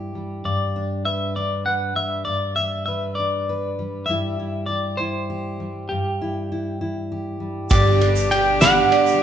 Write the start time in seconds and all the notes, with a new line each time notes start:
Already playing: G2 G3 E4 G4 B4
0.15 G3
0.45 G2 D5
0.76 D4
1.05 B4 E5
1.36 D4 D5
1.66 B4 F#5
1.96 G3 E5
2.25 G2 D5
2.56 D4 E5
2.86 B4 E5
3.15 D5
3.19 D4
3.49 B4
3.79 G3
4.06 G2 G3 E5
4.10 E4 G4
4.39 E4
4.66 G4 D5
4.97 E4 C5
5.30 G4
5.60 G3
5.89 G2 G4
6.22 E4
6.52 E4
6.81 E4
7.12 G4
7.40 G3
7.70 G1 G2 B2 D3 G3 B3 D4 G4 D5, kick, ride, shaker
8.00 G3 B3 D4 G4 B4, ride
8.16 shaker
8.31 G3 B3 D4 G4 D5 G5, ride
8.61 G2 D3 G3 B3 D4 G4 F#5 B5, snare, ride, shaker
8.91 G3 B3 D4 G4 D5, ride
9.06 shaker